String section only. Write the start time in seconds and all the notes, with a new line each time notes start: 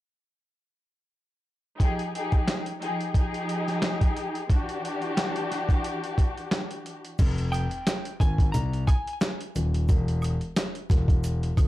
1.78 F3 D#4 G4 G#4
2.14 F3 D#4 G4 G#4
2.81 F3 D#4 G4 G#4
3.16 F3 D#4 G4 G#4
4.48 E3 D4 F#4 G4